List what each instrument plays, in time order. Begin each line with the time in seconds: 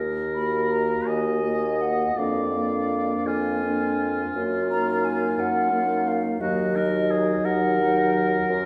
Already playing: bassoon D#2, oboe A#4
0.34 french horn A#3, clarinet F#4, flute B5
0.71 flute A#5
1.07 bassoon D#2, oboe D#5, flute G#5
1.43 french horn A#3, clarinet F#4
1.81 flute F#5
2.16 bassoon F2, french horn A#3, clarinet D4, oboe D5, flute F5
2.52 french horn A#3, clarinet D4
3.25 bassoon F2, oboe F4, flute G#5
3.64 french horn A#3, clarinet D4
4.35 bassoon F#2
4.70 french horn A#3, clarinet D#4, flute A#5
5.05 flute G#5
5.38 bassoon F#2, flute F#5
5.72 french horn A#3, clarinet D#4
6.07 flute F5
6.40 bassoon D#2, french horn F#3, clarinet D#4, oboe F#4, flute D#5
6.75 french horn F#3, clarinet D#4, oboe A#4
7.10 oboe G#4
7.44 bassoon D#2, oboe A#4, flute F#5
7.80 french horn F#3, clarinet D#4
8.49 bassoon F#2